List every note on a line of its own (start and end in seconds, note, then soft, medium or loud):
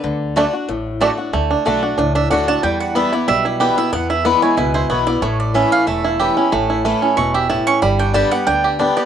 0.04 0.44 D2 loud
0.04 0.35 D3 medium
0.36 0.53 D3 loud
0.36 0.46 A3 medium
0.36 0.53 A3 medium
0.36 0.44 A3 medium
0.36 0.53 D4 loud
0.36 0.45 D4 medium
0.36 0.46 F#4 medium
0.36 0.52 F#4 loud
0.36 0.46 D5 medium
0.36 0.47 A5 medium
0.53 0.69 D4 soft
0.53 0.68 F#4 medium
0.69 1.09 A1 medium
0.69 1.30 A2 loud
1.00 1.17 D3 medium
1.00 1.10 A3 medium
1.00 1.18 A3 medium
1.00 1.09 A3 medium
1.00 1.18 D4 medium
1.00 1.09 D4 medium
1.00 1.11 F#4 loud
1.00 1.16 F#4 medium
1.00 1.11 D5 medium
1.00 1.11 A5 medium
1.17 1.33 D4 medium
1.17 1.33 F#4 medium
1.33 1.53 D2 medium
1.33 1.64 D3 medium
1.33 1.64 A3 medium
1.51 1.81 D4 medium
1.65 1.93 B1 medium
1.65 1.82 D3 medium
1.65 2.12 A3 medium
1.65 1.82 A3 loud
1.65 1.83 D4 loud
1.65 1.81 F#4 loud
1.83 1.96 D4 medium
1.83 1.98 D4 soft
1.83 1.97 F#4 medium
1.98 2.26 C#2 medium
1.98 2.60 A2 loud
1.98 2.14 D4 medium
2.15 2.29 D4 medium
2.15 2.30 E5 medium
2.30 2.58 D2 medium
2.30 2.47 D3 medium
2.30 2.48 A3 medium
2.30 2.47 D4 medium
2.30 2.48 D4 medium
2.30 2.47 F#4 medium
2.30 2.47 F#5 loud
2.48 2.63 D4 medium
2.48 2.62 F#4 medium
2.48 2.63 A5 loud
2.63 3.03 E2 medium
2.63 3.25 E2 medium
2.63 3.09 G3 medium
2.63 2.80 G5 medium
2.80 2.95 F#5 medium
2.95 3.12 E3 medium
2.95 3.12 G3 loud
2.95 3.42 B3 medium
2.95 3.12 B3 medium
2.95 3.11 E4 loud
2.95 3.12 E5 medium
3.13 3.28 B3 medium
3.13 3.45 E4 medium
3.13 3.27 E4 medium
3.13 3.28 D5 medium
3.28 3.68 B1 medium
3.28 3.90 B2 loud
3.28 3.74 G3 medium
3.28 3.45 E5 loud
3.45 4.09 E4 medium
3.45 3.60 G4 medium
3.60 3.77 E3 medium
3.60 3.77 G3 medium
3.60 3.77 B3 medium
3.60 3.76 E4 medium
3.60 3.93 G4 medium
3.60 3.77 B4 medium
3.77 3.91 B3 medium
3.77 3.93 B3 medium
3.77 3.92 E4 medium
3.77 3.92 E5 loud
3.93 4.33 E2 loud
3.93 4.55 E2 medium
3.93 4.24 B3 medium
3.93 4.09 F#5 loud
4.10 4.57 E4 medium
4.10 4.25 E5 medium
4.25 4.42 E3 medium
4.25 4.42 G#3 medium
4.25 4.71 B3 medium
4.25 4.42 B3 loud
4.25 4.41 E4 loud
4.25 4.42 D5 medium
4.42 4.87 G#3 medium
4.42 4.58 B3 soft
4.42 4.57 E4 medium
4.42 4.57 C#5 medium
4.57 4.85 C#2 medium
4.57 5.20 B2 medium
4.57 4.74 E4 medium
4.57 4.74 B4 medium
4.74 5.06 E4 medium
4.74 4.89 C5 medium
4.90 5.17 B1 medium
4.90 5.06 E3 medium
4.90 5.07 G#3 medium
4.90 5.22 B3 medium
4.90 5.07 B3 medium
4.90 5.06 E4 medium
4.90 5.06 C#5 medium
5.07 5.23 B3 medium
5.07 5.72 E4 medium
5.07 5.22 E4 medium
5.07 5.22 D5 loud
5.22 5.62 A1 medium
5.22 5.84 A2 medium
5.22 5.87 A3 medium
5.22 5.39 C#5 medium
5.40 5.54 D5 medium
5.54 5.86 E3 medium
5.54 5.86 A3 loud
5.54 6.01 C#4 medium
5.54 5.86 C#4 loud
5.54 5.86 E4 loud
5.54 5.72 E5 medium
5.72 6.03 E4 medium
5.72 5.87 F5 loud
5.87 6.27 E1 medium
5.87 6.49 E2 medium
5.87 6.34 A3 medium
5.87 6.48 E5 medium
6.04 6.49 E4 medium
6.20 6.36 E3 medium
6.20 6.36 A3 medium
6.20 6.37 C#4 medium
6.20 6.35 E4 medium
6.20 6.66 G4 medium
6.37 6.82 C#4 medium
6.37 6.52 C#4 medium
6.37 6.51 E4 medium
6.52 6.92 A1 loud
6.52 7.14 A2 medium
6.52 6.84 A3 medium
6.70 7.14 E4 medium
6.85 7.01 E3 medium
6.85 7.31 A3 medium
6.85 7.02 A3 loud
6.85 7.02 C#4 loud
6.85 7.01 E4 loud
7.02 7.47 C#4 medium
7.02 7.17 C#4 soft
7.02 7.17 E4 medium
7.17 7.57 E1 medium
7.17 7.48 B2 loud
7.17 7.48 E4 medium
7.17 7.34 C#6 medium
7.34 7.79 G4 medium
7.34 7.49 E5 medium
7.49 7.80 A2 medium
7.49 7.82 E4 medium
7.49 7.66 A5 medium
7.67 7.82 C#4 medium
7.67 7.82 C#6 loud
7.82 8.22 G1 loud
7.82 8.44 G2 medium
7.82 8.13 G3 medium
7.82 7.99 B5 medium
7.99 8.44 D4 medium
7.99 8.14 G5 medium
8.14 8.31 D3 medium
8.14 8.61 G3 medium
8.14 8.31 G3 loud
8.14 8.31 B3 loud
8.14 8.30 G4 loud
8.14 8.31 A5 loud
8.31 8.76 B3 medium
8.31 8.47 B3 soft
8.31 8.46 G4 medium
8.31 8.46 F#5 loud
8.47 8.87 D2 medium
8.47 8.78 D3 medium
8.47 8.78 D4 medium
8.47 8.93 G5 loud
8.64 9.05 G4 medium
8.79 8.96 D3 medium
8.79 8.96 G3 medium
8.79 8.96 B3 medium
8.79 9.05 D4 medium
8.79 8.96 G4 medium
8.97 9.05 B3 medium
8.97 9.05 G4 medium
8.97 9.05 D5 medium